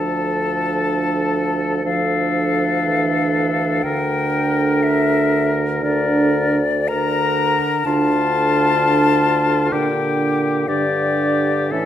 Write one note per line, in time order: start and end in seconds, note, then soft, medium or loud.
0.00 3.80 D2 soft
0.00 1.81 F3 soft
0.00 1.80 D4 soft
0.00 1.80 A4 soft
0.00 1.84 A5 soft
1.84 2.86 F3 soft
1.84 3.79 D4 soft
1.84 3.80 A4 soft
1.84 3.85 F5 soft
2.85 3.84 E3 soft
3.83 7.55 D2 soft
3.83 5.79 D3 soft
3.83 5.79 D4 soft
3.83 5.79 A#4 soft
3.83 4.84 G5 medium
4.83 5.55 E5 medium
5.81 6.59 D3 soft
5.81 6.59 D4 soft
5.81 6.59 A#4 soft
5.81 6.90 D5 soft
6.88 7.82 D3 soft
6.88 7.81 D4 soft
6.88 7.82 A#4 soft
6.88 7.86 A#5 medium
7.85 9.68 D2 soft
7.85 9.69 D3 soft
7.85 9.69 D4 soft
7.85 9.74 F4 soft
7.85 9.71 A5 medium
9.72 10.70 A#2 soft
9.72 10.66 D3 soft
9.72 10.66 D4 soft
9.72 10.68 G4 soft
9.72 10.69 G5 soft
10.68 11.71 G2 soft
10.68 11.75 D3 soft
10.68 11.73 D4 soft
10.68 11.73 G4 soft
10.68 11.71 D5 soft
11.71 11.86 A2 soft
11.71 11.86 E3 soft
11.71 11.86 C#4 soft
11.71 11.86 A4 soft
11.71 11.86 E5 soft